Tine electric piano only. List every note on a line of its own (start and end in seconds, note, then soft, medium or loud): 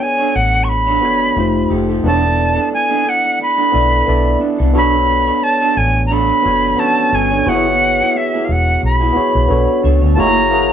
0.00 0.39 B3 medium
0.00 0.39 D4 medium
0.00 0.40 F#4 medium
0.00 0.40 A4 medium
0.00 0.41 C#5 medium
1.00 1.29 B3 medium
1.00 1.29 D4 medium
1.00 1.30 F#4 medium
1.00 1.30 A4 medium
1.05 1.31 C#5 medium
1.36 1.90 A3 medium
1.36 1.91 D#4 medium
1.36 1.91 F4 medium
1.36 1.92 G4 medium
1.36 1.92 C5 medium
2.04 3.11 B3 medium
2.04 3.11 D4 medium
2.04 3.12 E4 medium
2.04 3.12 A4 medium
2.04 2.13 C#5 medium
2.14 3.16 D5 medium
3.72 4.00 B3 medium
3.72 4.00 D4 medium
3.72 4.01 E4 medium
3.72 4.01 A4 medium
3.72 4.02 D5 medium
4.06 4.61 B3 medium
4.06 4.62 D4 medium
4.06 4.62 E4 medium
4.06 4.63 A4 medium
4.06 4.63 D5 medium
4.74 5.82 B3 medium
4.74 5.82 D4 medium
4.74 5.82 F#4 medium
4.74 5.83 A4 medium
4.74 5.83 C#5 medium
6.43 6.71 B3 medium
6.43 6.72 D4 medium
6.43 6.72 F#4 medium
6.43 6.73 A4 medium
6.43 6.73 C#5 medium
6.77 7.32 B3 medium
6.77 6.85 C#4 soft
6.77 7.33 F#4 medium
6.77 7.34 A4 medium
6.77 7.34 C#5 medium
6.84 7.36 D4 medium
7.45 8.53 B3 medium
7.45 8.53 E4 medium
7.45 8.54 F#4 medium
7.45 8.54 G#4 medium
7.45 7.55 B4 medium
7.55 8.58 C#5 medium
9.13 9.42 B3 medium
9.13 9.43 E4 medium
9.13 9.43 F#4 medium
9.13 9.43 G#4 medium
9.13 9.44 C#5 medium
9.48 10.04 B3 medium
9.48 10.04 D4 medium
9.48 10.05 F#4 medium
9.48 10.05 A4 medium
9.48 10.05 C#5 medium
10.16 10.45 A#3 medium
10.16 10.45 E4 medium
10.16 10.45 F#4 medium
10.16 10.46 G#4 medium
10.16 10.46 C#5 medium
10.50 10.73 A#3 medium
10.50 10.73 E4 medium
10.50 10.73 F#4 medium
10.50 10.73 G#4 medium
10.50 10.73 A#4 medium